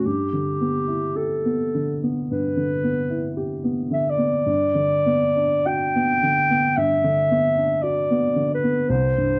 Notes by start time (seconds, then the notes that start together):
0.06 G2 G4
0.33 D3
0.61 B3
0.88 E4
1.15 G4 A4
1.45 B3
1.75 D3
2.03 B3
2.31 G2 B4
2.57 D3
2.84 B3
3.10 E4
3.37 G4
3.64 B3
3.91 D3 E5
4.10 D5
4.18 B3
4.46 G2
4.75 D3
5.06 B3
5.36 D4
5.66 F#4 G5
5.95 B3
6.23 D3
6.50 B3
6.77 G2 E5
7.04 D3
7.31 B3
7.57 D4
7.82 F#4 D5
8.10 B3
8.36 D3
8.54 B4
8.63 B3
8.89 C2 C5
9.18 G2